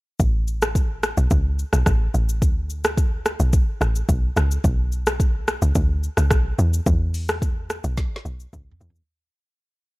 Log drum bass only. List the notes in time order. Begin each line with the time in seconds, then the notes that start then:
0.20 A1
1.17 B1
1.31 C#2
1.73 B1
1.86 A1
2.14 A1
2.42 D2
3.40 B1
3.81 A1
4.09 B1
4.36 C#2
4.64 B1
5.62 C#2
5.75 D2
6.18 C#2
6.31 B1
6.59 E2
6.86 E2
7.84 B1
8.25 B1
8.53 C#2
8.81 E2